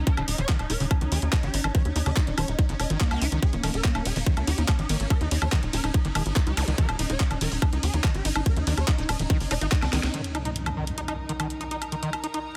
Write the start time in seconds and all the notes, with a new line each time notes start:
Already playing: C#4
0.07 D#4 A#4, kick, closed hi-hat
0.17 D#1 C#3 D#4, closed hi-hat, high woodblock
0.28 D#1 D#4, open hi-hat
0.38 D#1 D#3 C#5, closed hi-hat
0.49 D#3 D#4, kick, clap, closed hi-hat
0.59 D#1 D#4, closed hi-hat, high woodblock
0.70 D#1 D#4 A#4, open hi-hat
0.80 D#1 C#3 D#4, open hi-hat
0.91 D#4, kick, closed hi-hat, high woodblock
1.01 C#2 D#3 D#4, closed hi-hat
1.12 D#2 D#3 G#4, open hi-hat
1.22 D#2 D#4, closed hi-hat
1.33 D#4, kick, clap, closed hi-hat, high woodblock
1.43 G#1 C#3 G4, closed hi-hat
1.54 G#1 D#4, open hi-hat
1.64 G#1 D#3 D#4, closed hi-hat, high woodblock
1.75 D#3 C#5, kick, closed hi-hat
1.85 D#2 D#4, closed hi-hat
1.96 D#2 D#4, open hi-hat
2.06 D#2 C#3 D#5, closed hi-hat, high woodblock
2.17 D#4, kick, clap, closed hi-hat
2.27 D#1 D#3 D#4, closed hi-hat
2.38 D#1 D#3 C#5, open hi-hat, high woodblock
2.48 D#1 D#4, closed hi-hat
2.59 D#4, kick, closed hi-hat
2.69 G1 C#3 D#4, closed hi-hat
2.80 E1 D#5, open hi-hat, high woodblock
2.90 G#1 D#3 D#4, closed hi-hat
3.01 A#3 D#4, kick, clap, closed hi-hat
3.11 C#2 G5, closed hi-hat, high woodblock
3.22 C#2 D#4, open hi-hat
3.32 C#2 D#3 D#4, closed hi-hat
3.42 G#4, kick, closed hi-hat
3.53 D#1 D#3 A#3, closed hi-hat
3.63 D#1 D#3 A#3, open hi-hat, ride, high woodblock
3.74 D#1 A#4, closed hi-hat
3.84 A#3 D#4, kick, clap, closed hi-hat
3.95 D#1 A#3 D#4, closed hi-hat, high woodblock
4.05 D#1 G#4, open hi-hat, ride
4.16 D#1 D#3 A#3, open hi-hat
4.26 D#3 A#3, kick, closed hi-hat
4.37 C#2 A#3, closed hi-hat, high woodblock
4.47 D#2 D#4 G4, open hi-hat, ride
4.58 D#2 A#3 D#4, closed hi-hat
4.68 A#3, kick, clap, closed hi-hat, high woodblock
4.79 G#1 D#3 D#4, closed hi-hat
4.89 G#1 D#3 A#3, open hi-hat, ride
5.00 G#1 A#3, closed hi-hat
5.10 D#4 A#4, kick, closed hi-hat, high woodblock
5.21 D#2 D#4, closed hi-hat
5.31 D#2 D#4, open hi-hat, ride
5.42 D#2 D#3 C#5, closed hi-hat, high woodblock
5.52 D#3 D#4, kick, clap, closed hi-hat
5.63 D#1 D#4, closed hi-hat
5.73 D#1 D#4 A#4, open hi-hat, ride
5.84 D#1 D#4, closed hi-hat, high woodblock
5.94 D#4, kick, closed hi-hat
6.05 G1 D#3 D#4, closed hi-hat
6.15 E1 D#3 G#4, open hi-hat, ride, high woodblock
6.26 G#1 D#4, closed hi-hat
6.36 D#4, kick, clap, closed hi-hat
6.47 C#2 D#4 G4, closed hi-hat
6.57 C#2 D#4, open hi-hat, ride, zap, high woodblock
6.68 C#2 D#3 D#4, closed hi-hat
6.78 D#3 A#4, kick, closed hi-hat
6.89 D#1 D#4, closed hi-hat, high woodblock
6.99 D#1 D#4, open hi-hat, ride
7.10 D#1 D#4 C#5, closed hi-hat
7.20 D#4, kick, clap, closed hi-hat
7.31 D#1 D#3 D#4, closed hi-hat, high woodblock
7.41 D#1 D#3 A#4, open hi-hat, ride
7.52 D#1 D#4, open hi-hat
7.62 D#4, kick, closed hi-hat, high woodblock
7.73 C#2 D#4, closed hi-hat
7.83 D#2 G#4, open hi-hat, ride
7.94 D#2 D#3 D#4, closed hi-hat
8.04 D#3 D#4, kick, clap, closed hi-hat, high woodblock
8.15 G#1 G4, closed hi-hat
8.25 G#1 D#4, open hi-hat, ride
8.36 G#1 D#4, closed hi-hat, high woodblock
8.46 A#4, kick, closed hi-hat
8.56 D#2 D#3 D#4, closed hi-hat
8.67 D#2 D#3 D#4, open hi-hat, ride
8.77 D#2 C#5, closed hi-hat, high woodblock
8.88 D#4, kick, clap, closed hi-hat
8.98 D#1 D#4, closed hi-hat
9.09 D#1 D#5, open hi-hat, ride, high woodblock
9.19 D#1 D#3 D#4, closed hi-hat
9.30 D#3 D#4, kick, closed hi-hat
9.40 G1 D#4, open hi-hat
9.51 E1 D#4 D#5, open hi-hat, ride, high woodblock
9.61 G#1 D#4, closed hi-hat
9.72 D#4, kick, clap, closed hi-hat
9.82 C#2 D#3 D#5, snare, closed hi-hat, high woodblock
9.93 C#2 D#3 D#4, snare, open hi-hat, ride
10.03 C#2 D#4, snare, closed hi-hat
10.14 D#3 D#4, closed hi-hat, impact
10.24 closed hi-hat
10.35 D#4, closed hi-hat, high woodblock
10.42 D#4 A#4, closed hi-hat
10.56 closed hi-hat
10.66 D#3, closed hi-hat, high woodblock
10.77 D#3
10.87 closed hi-hat
10.98 D#4, closed hi-hat
11.08 D#4, closed hi-hat, high woodblock
11.29 D#3 A#5, closed hi-hat
11.40 D#3, closed hi-hat, high woodblock
11.50 closed hi-hat
11.61 D#4, closed hi-hat
11.71 D#4, closed hi-hat
11.82 closed hi-hat, high woodblock
11.92 D#3, closed hi-hat
12.03 D#3, closed hi-hat
12.13 closed hi-hat, high woodblock
12.24 D#4, closed hi-hat
12.34 D#4, closed hi-hat